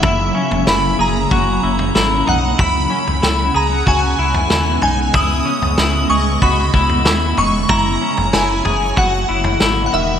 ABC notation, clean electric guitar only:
X:1
M:4/4
L:1/8
Q:1/4=94
K:C#dor
V:1 name="Clean electric guitar"
E C E G F E E D | E C E G F E E D | E C E G F E E D | E C E G F E E D, |]